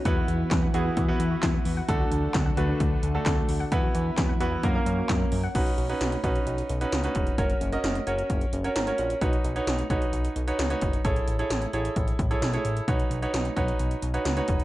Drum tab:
CC |----------------|----------------|----------------|x---------------|
HH |x-x-x-x-x-x-x-o-|x-x-x-x-x-x-x-o-|x-x-x-x-x-x-x-o-|xxxxxxxxxxxxxxxx|
CP |----x-------x---|----x-------x---|----x-------x---|----------------|
SD |----o-------o---|----o-------o---|----o-------o---|----o-------o---|
BD |o---o---o---o---|o---o---o---o---|o---o---o---o---|o-----o-------o-|

CC |----------------|----------------|----------------|----------------|
HH |xxxxxxxxxxxxxxxx|xxxxxxxxxxxxxxxx|xxxxxxxxxxxxxxxx|xxxxxxxxxxxxxxxx|
CP |----------------|----------------|----------------|----------------|
SD |----o-------o---|----o-------o---|----o-------o---|----o-------o---|
BD |o-------o-------|o-----o-------o-|o-------o-o-----|o-----o-------o-|